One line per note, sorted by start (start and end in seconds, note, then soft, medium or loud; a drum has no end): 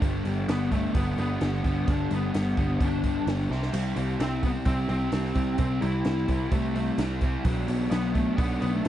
0.02 0.21 G1 medium
0.02 0.25 G2 medium
0.02 0.24 D3 medium
0.02 0.25 G3 medium
0.02 0.26 B3 medium
0.02 0.26 D4 loud
0.02 kick loud
0.02 open hi-hat medium
0.25 0.44 G1 medium
0.25 0.48 G2 medium
0.25 0.48 D3 medium
0.25 0.49 G3 medium
0.25 0.49 B3 medium
0.25 0.49 D4 medium
0.25 open hi-hat soft
0.48 0.86 G1 medium
0.48 0.70 G2 medium
0.48 0.70 D3 medium
0.48 0.72 G3 medium
0.48 0.71 B3 medium
0.48 0.71 D4 medium
0.48 snare loud
0.48 open hi-hat medium
0.71 0.93 G2 medium
0.71 0.94 D3 medium
0.71 0.95 G3 medium
0.71 0.93 A3 medium
0.71 0.95 B3 medium
0.71 0.95 D4 medium
0.71 kick medium
0.71 open hi-hat soft
0.94 1.14 G1 medium
0.94 1.17 G2 medium
0.94 1.17 D3 medium
0.94 1.19 G3 medium
0.94 1.18 B3 loud
0.94 1.19 D4 medium
0.94 kick medium
0.94 open hi-hat medium
1.18 1.37 G1 medium
1.18 1.40 G2 medium
1.18 1.41 D3 medium
1.18 1.42 G3 medium
1.18 1.41 B3 medium
1.18 1.42 D4 medium
1.18 open hi-hat soft
1.41 1.60 G1 medium
1.41 1.63 G2 medium
1.41 1.63 D3 medium
1.41 1.65 G3 medium
1.41 1.64 B3 medium
1.41 1.65 D4 medium
1.41 snare loud
1.41 open hi-hat medium
1.64 1.83 G1 medium
1.64 1.86 G2 medium
1.64 1.87 D3 medium
1.64 1.88 G3 medium
1.64 1.88 B3 medium
1.64 1.88 D4 medium
1.64 kick medium
1.64 open hi-hat soft
1.87 2.07 G1 medium
1.87 2.09 G2 medium
1.87 2.10 D3 medium
1.87 2.11 G3 medium
1.87 2.11 B3 medium
1.87 2.11 D4 medium
1.87 kick loud
1.87 open hi-hat medium
2.11 2.30 G1 medium
2.11 2.32 G2 medium
2.11 2.33 D3 medium
2.11 2.34 G3 medium
2.11 2.34 B3 medium
2.11 2.34 D4 medium
2.11 open hi-hat soft
2.34 2.53 G1 medium
2.34 2.56 G2 medium
2.34 2.57 D3 medium
2.34 2.58 G3 medium
2.34 2.57 B3 medium
2.34 2.58 D4 medium
2.34 snare loud
2.34 open hi-hat medium
2.57 2.76 G1 medium
2.57 2.79 G2 medium
2.57 2.80 D3 medium
2.57 2.81 G3 medium
2.57 2.81 B3 medium
2.57 2.81 D4 medium
2.57 kick medium
2.57 open hi-hat soft
2.80 3.18 G1 medium
2.80 3.03 G2 medium
2.80 3.03 D3 medium
2.80 3.04 G3 medium
2.80 3.04 B3 medium
2.80 3.04 D4 medium
2.80 kick loud
2.80 open hi-hat medium
3.04 3.26 G2 medium
3.04 3.27 D3 medium
3.04 3.28 G3 medium
3.04 3.28 B3 medium
3.04 3.28 D4 medium
3.04 kick medium
3.04 open hi-hat soft
3.27 3.46 G1 medium
3.27 3.49 G2 medium
3.27 3.49 D3 medium
3.27 3.50 G3 medium
3.27 3.50 B3 medium
3.27 3.50 D4 medium
3.27 snare loud
3.27 open hi-hat medium
3.50 3.69 C2 medium
3.50 3.73 C3 medium
3.50 3.73 G3 medium
3.50 3.74 C4 medium
3.50 3.74 E4 medium
3.50 snare medium
3.63 snare medium
3.73 3.92 C2 medium
3.73 3.96 C3 medium
3.73 3.97 G3 medium
3.73 3.97 C4 medium
3.73 3.98 E4 medium
3.73 open hi-hat medium
3.73 crash medium
3.96 4.15 C2 medium
3.96 4.20 C3 medium
3.96 4.21 G3 medium
3.96 4.21 C4 medium
3.96 4.22 E4 medium
3.96 open hi-hat soft
4.20 4.58 C2 medium
4.20 4.44 C3 medium
4.20 4.44 G3 medium
4.20 4.44 C4 medium
4.20 4.45 E4 medium
4.20 snare loud
4.20 open hi-hat medium
4.43 4.65 C3 medium
4.43 4.65 G3 medium
4.43 4.49 B3 medium
4.43 4.66 C4 medium
4.43 4.66 E4 medium
4.43 kick medium
4.43 open hi-hat soft
4.65 4.85 C2 medium
4.65 4.88 C3 medium
4.65 4.89 G3 medium
4.65 4.89 C4 medium
4.65 4.89 E4 loud
4.65 kick loud
4.65 open hi-hat medium
4.89 5.08 C2 medium
4.89 5.11 C3 medium
4.89 5.11 G3 medium
4.89 5.12 C4 medium
4.89 5.12 E4 medium
4.89 open hi-hat soft
5.12 5.31 C2 medium
5.12 5.34 C3 medium
5.12 5.34 G3 medium
5.12 5.34 C4 medium
5.12 5.35 E4 medium
5.12 snare loud
5.12 open hi-hat medium
5.35 5.55 C2 medium
5.35 5.57 C3 medium
5.35 5.57 G3 medium
5.35 5.58 C4 medium
5.35 5.58 E4 medium
5.35 kick medium
5.35 open hi-hat soft
5.58 5.78 C2 medium
5.58 5.81 C3 medium
5.58 5.81 G3 medium
5.58 5.82 C4 medium
5.58 5.82 E4 medium
5.58 kick loud
5.58 open hi-hat medium
5.82 6.01 C2 medium
5.82 6.04 C3 medium
5.82 6.05 G3 medium
5.82 6.05 C4 medium
5.82 6.06 E4 medium
5.82 open hi-hat soft
6.05 6.25 C2 medium
6.05 6.27 C3 medium
6.05 6.28 G3 medium
6.05 6.28 C4 medium
6.05 6.29 E4 medium
6.05 snare loud
6.05 open hi-hat medium
6.28 6.48 C2 medium
6.28 6.50 C3 medium
6.28 6.51 G3 medium
6.28 6.51 C4 medium
6.28 6.51 E4 medium
6.28 kick medium
6.28 open hi-hat soft
6.51 6.90 C2 medium
6.51 6.74 C3 medium
6.51 6.74 G3 medium
6.51 6.95 A3 medium
6.51 6.74 C4 medium
6.51 6.75 E4 medium
6.51 kick medium
6.51 open hi-hat medium
6.75 6.97 C3 medium
6.75 6.98 G3 medium
6.75 6.98 C4 loud
6.75 6.99 E4 medium
6.75 open hi-hat soft
6.98 7.36 C2 medium
6.98 7.21 C3 medium
6.98 7.21 G3 medium
6.98 7.21 C4 medium
6.98 7.22 E4 loud
6.98 snare medium
6.98 open hi-hat medium
7.21 7.44 C3 medium
7.21 7.44 G3 medium
7.21 7.44 C4 medium
7.21 7.45 E4 medium
7.21 kick medium
7.21 open hi-hat soft
7.45 7.64 B1 medium
7.45 7.68 B2 medium
7.45 7.69 F#3 medium
7.45 7.69 B3 medium
7.45 7.69 D4 loud
7.45 kick loud
7.45 open hi-hat medium
7.68 7.87 B1 medium
7.68 7.91 B2 medium
7.68 7.92 F#3 medium
7.68 7.92 B3 medium
7.68 7.93 D4 medium
7.68 open hi-hat medium
7.91 8.29 B1 medium
7.91 8.15 B2 medium
7.91 8.15 F#3 medium
7.91 8.15 B3 medium
7.91 8.16 D4 medium
7.91 snare loud
7.91 open hi-hat medium
8.14 8.37 B2 medium
8.14 8.37 F#3 medium
8.14 8.36 A3 medium
8.14 8.38 B3 medium
8.14 8.39 D4 medium
8.14 kick medium
8.14 open hi-hat soft
8.38 8.57 B1 medium
8.38 8.60 B2 medium
8.38 8.61 F#3 medium
8.38 8.62 B3 medium
8.38 8.63 D4 loud
8.38 kick loud
8.38 open hi-hat medium
8.61 8.81 B1 medium
8.61 8.84 B2 medium
8.61 8.84 F#3 medium
8.61 8.86 B3 medium
8.61 8.86 D4 medium
8.61 open hi-hat soft
8.73 8.84 A3 medium
8.85 8.88 B2 medium
8.85 open hi-hat medium